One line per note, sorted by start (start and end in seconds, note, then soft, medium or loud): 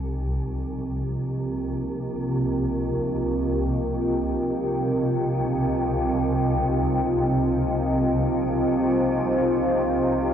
0.00 10.34 C2 medium
0.00 10.34 C3 medium
0.00 10.34 C4 medium
0.00 1.34 D#4 medium
0.00 10.34 F4 medium
0.00 10.34 D#5 medium
0.45 7.72 A#4 medium
1.46 8.84 G5 medium
7.41 10.34 C5 medium
8.52 10.34 F5 medium